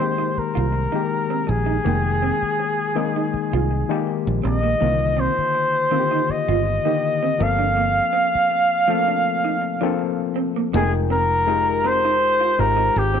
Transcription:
0.00 0.93 D#3 medium
0.00 0.94 G#3 medium
0.00 0.94 A#3 medium
0.00 0.95 G4 medium
0.00 0.40 C5 medium
0.18 0.28 D#4 medium
0.38 1.51 A#4 medium
0.38 muted fingered electric bass stroke soft
0.55 0.86 C2 medium
0.55 0.65 F4 medium
0.72 muted clean electric guitar stroke soft
0.92 1.77 D#3 medium
0.92 1.77 G#3 medium
0.92 1.77 A#3 medium
0.92 1.02 D#4 medium
0.92 1.78 G4 medium
1.30 1.40 C4 medium
1.47 1.78 A#1 medium
1.47 4.18 G#4 medium
1.47 muted clean electric guitar stroke soft
1.66 1.76 D#4 medium
1.85 2.30 F1 medium
1.85 2.87 D#3 medium
1.85 2.87 G#3 medium
1.85 1.96 A#3 medium
1.85 2.87 A#3 medium
1.85 2.87 G5 medium
2.22 2.33 C4 medium
2.42 muted fingered electric bass stroke soft
2.60 muted clean electric guitar stroke soft
2.95 3.80 D#3 medium
2.95 3.81 G#3 medium
2.95 3.81 A#3 medium
2.95 3.07 C4 medium
2.95 3.81 D#4 medium
3.16 3.25 D#4 medium
3.34 muted fingered electric bass stroke soft
3.53 3.82 C2 medium
3.53 3.63 F4 medium
3.71 muted clean electric guitar stroke soft
3.89 4.73 D#3 medium
3.89 4.73 G#3 medium
3.89 4.73 A#3 medium
3.89 4.00 D#4 medium
3.89 4.73 G4 loud
4.07 muted clean electric guitar stroke soft
4.27 4.40 A#1 medium
4.43 4.74 A#1 medium
4.43 4.54 C4 medium
4.43 5.22 D#5 loud
4.63 4.73 A#3 medium
4.80 5.27 C2 medium
4.80 5.83 D3 medium
4.80 5.83 D#3 medium
4.80 4.91 A#3 medium
4.80 5.83 A#3 medium
4.80 5.84 F4 medium
5.17 5.28 C4 medium
5.17 6.32 C5 loud
5.38 muted fingered electric bass stroke soft
5.55 muted clean electric guitar stroke soft
5.91 6.77 D3 medium
5.91 6.76 D#3 medium
5.91 6.77 A#3 medium
5.91 6.02 C4 medium
5.91 5.99 F4 medium
6.00 6.81 G4 medium
6.11 6.21 D#4 medium
6.29 7.44 D#5 medium
6.29 muted fingered electric bass stroke soft
6.48 6.78 G1 medium
6.48 6.58 F4 medium
6.66 muted clean electric guitar stroke soft
6.85 7.40 D3 medium
6.85 7.39 D#3 medium
6.85 7.38 A#3 medium
6.85 6.95 D#4 medium
6.85 7.40 G4 medium
7.23 7.32 C4 medium
7.39 7.99 G1 loud
7.39 8.75 F3 medium
7.39 8.76 A#3 medium
7.39 8.76 C4 medium
7.39 8.76 A4 medium
7.39 10.37 F5 loud
7.39 muted clean electric guitar stroke soft
7.59 7.68 D4 medium
7.77 7.88 A#3 medium
8.13 8.24 C4 medium
8.35 muted fingered electric bass stroke soft
8.51 muted clean electric guitar stroke soft
8.88 9.73 F3 medium
8.88 8.95 A3 medium
8.88 8.99 C4 medium
8.88 9.74 C4 medium
8.88 9.74 A4 medium
8.95 9.76 A#3 medium
9.08 9.17 D4 medium
9.44 9.54 D#4 medium
9.62 muted clean electric guitar stroke soft
9.81 10.65 F3 medium
9.81 10.66 A#3 medium
9.81 10.66 C4 medium
9.81 9.91 D4 medium
9.81 10.66 A4 loud
9.99 muted clean electric guitar stroke soft
10.36 10.47 C4 medium
10.56 10.66 A#3 medium
10.73 12.54 F1 loud
10.73 10.80 G3 medium
10.73 10.84 A#3 medium
10.73 11.41 D#4 medium
10.73 11.42 F4 medium
10.73 10.92 G#4 medium
10.73 11.42 A#4 medium
10.73 11.42 G5 medium
10.80 11.44 G#3 medium
11.10 11.21 C4 medium
11.10 11.88 A#4 loud
11.47 12.49 G#3 medium
11.47 12.49 D#4 medium
11.47 12.50 F4 medium
11.47 12.50 G4 medium
11.47 12.50 A#4 medium
11.47 muted clean electric guitar stroke soft
11.84 11.95 C4 medium
11.84 12.61 C5 loud
12.05 12.14 D#4 medium
12.41 12.50 F4 medium
12.59 12.88 G#1 medium
12.59 13.20 G#3 medium
12.59 13.20 D#4 medium
12.59 13.20 F4 medium
12.59 13.20 G4 medium
12.59 13.00 A#4 loud
12.59 13.20 C5 medium
12.59 muted clean electric guitar stroke soft
12.77 12.87 D#4 medium
12.96 13.20 G#1 medium
12.96 13.20 G4 loud
13.14 13.20 C4 medium

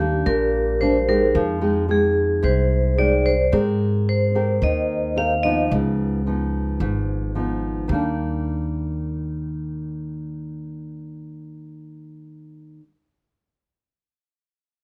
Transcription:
0.00 0.22 D#2 medium
0.00 0.23 D#3 medium
0.00 0.76 G3 medium
0.00 0.76 A#3 medium
0.00 0.77 D4 medium
0.00 0.23 G4 medium
0.26 1.31 A#1 medium
0.26 1.32 A#2 medium
0.26 0.77 A#4 medium
0.81 0.97 G3 medium
0.81 0.97 A#3 medium
0.81 0.97 D4 medium
0.81 1.07 C5 medium
1.08 1.58 G#3 medium
1.08 1.58 D#4 medium
1.08 1.58 G4 medium
1.08 1.34 A#4 medium
1.35 2.40 F2 medium
1.35 2.41 F3 medium
1.61 1.84 G#3 medium
1.61 1.85 D#4 medium
1.61 1.85 G4 medium
1.88 2.93 G#3 medium
1.88 2.93 D#4 medium
1.88 2.94 G4 medium
1.88 2.41 G#4 medium
2.43 3.49 C2 medium
2.43 3.49 C3 medium
2.43 2.95 C5 medium
2.98 3.33 G#3 medium
2.98 3.33 D#4 soft
2.98 3.33 G4 medium
2.98 3.25 D5 medium
3.26 3.52 C5 medium
3.52 4.58 G#2 loud
3.52 4.59 G#3 medium
3.52 4.30 C4 medium
3.52 4.30 G4 medium
3.52 4.30 A#4 medium
4.09 4.59 C5 medium
4.35 5.12 C4 medium
4.35 5.12 G4 medium
4.35 5.12 A#4 medium
4.62 5.67 D#2 medium
4.62 5.68 D#3 medium
4.62 5.13 D#5 medium
5.16 5.32 C4 medium
5.16 5.32 G4 medium
5.16 5.33 A#4 medium
5.16 5.43 F5 medium
5.43 6.21 F3 medium
5.43 6.21 B3 medium
5.43 6.22 D#4 medium
5.43 5.60 D#5 medium
5.71 6.76 C#2 medium
5.71 6.78 C#3 medium
6.26 7.31 F3 medium
6.26 7.31 B3 medium
6.26 7.31 D#4 medium
6.80 7.85 G#1 medium
6.80 7.87 G#2 medium
7.35 7.85 F3 medium
7.35 7.85 B3 soft
7.35 7.85 D#4 medium
7.88 12.77 D#2 medium
7.88 12.80 D#3 medium
7.88 12.83 G3 medium
7.92 12.84 A#3 medium
7.92 12.86 D4 medium

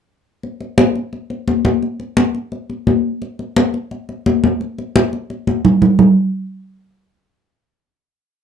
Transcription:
0.43 high conga soft
0.60 high conga soft
0.78 high conga medium
0.96 high conga soft
1.13 high conga soft
1.30 high conga soft
1.48 high conga medium
1.65 high conga medium
1.82 high conga soft
2.00 high conga soft
2.17 high conga medium
2.35 high conga soft
2.52 high conga soft
2.70 high conga soft
2.87 high conga medium
3.22 high conga soft
3.39 high conga soft
3.56 high conga medium
3.74 high conga soft
3.91 high conga soft
4.09 high conga soft
4.26 high conga medium
4.44 high conga medium
4.61 high conga soft
4.78 high conga soft
4.96 high conga medium
5.13 high conga soft
5.30 high conga soft
5.47 high conga medium
5.65 low conga medium
5.82 low conga medium
5.99 low conga medium

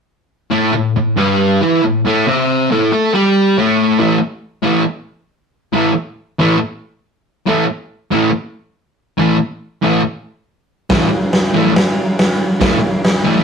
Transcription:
0.50 0.72 A2 medium
0.50 0.73 A3 loud
0.73 0.91 A2 medium
0.97 1.14 A2 medium
1.17 1.60 G2 medium
1.17 1.61 G3 medium
1.61 1.83 E3 medium
1.61 1.83 E4 medium
1.83 2.01 A2 medium
2.05 2.26 A2 medium
2.05 2.27 A3 loud
2.27 2.70 C3 medium
2.27 2.70 C4 loud
2.71 2.92 A2 medium
2.71 2.91 A3 loud
2.92 3.13 A3 medium
2.92 3.14 A4 medium
3.13 3.56 G3 medium
3.13 3.57 G4 loud
3.58 3.98 A2 medium
3.58 4.00 A3 loud
3.99 4.17 A2 medium
3.99 4.17 E3 loud
3.99 4.18 A3 medium
4.62 4.81 A2 medium
4.62 4.82 E3 medium
4.62 4.83 A3 loud
5.73 5.91 A2 medium
5.73 5.91 E3 medium
5.73 5.91 A3 loud
6.39 6.56 A2 medium
6.39 6.56 E3 medium
6.39 6.57 A3 medium
7.46 7.64 A2 loud
7.46 7.64 E3 medium
7.46 7.65 A3 loud
8.11 8.28 A2 medium
8.11 8.29 E3 medium
8.11 8.30 A3 medium
9.17 9.35 A2 medium
9.17 9.36 E3 loud
9.17 9.36 A3 medium
9.82 10.00 A2 medium
9.82 10.01 E3 medium
9.82 10.01 A3 medium
10.89 11.07 A2 medium
10.89 11.08 E3 medium
10.89 11.08 A3 loud
10.89 kick loud
10.89 snare loud
10.89 open hi-hat medium
11.33 snare loud
11.33 open hi-hat medium
11.54 11.71 A2 medium
11.54 11.72 E3 medium
11.54 11.72 A3 medium
11.76 snare loud
11.76 open hi-hat medium
12.19 snare loud
12.19 open hi-hat medium
12.61 12.78 A2 medium
12.61 12.78 E3 loud
12.61 12.79 A3 loud
12.61 kick loud
12.61 snare loud
12.61 open hi-hat medium
13.04 snare loud
13.04 open hi-hat medium
13.24 13.41 A2 medium
13.24 13.42 E3 medium
13.24 13.42 A3 medium

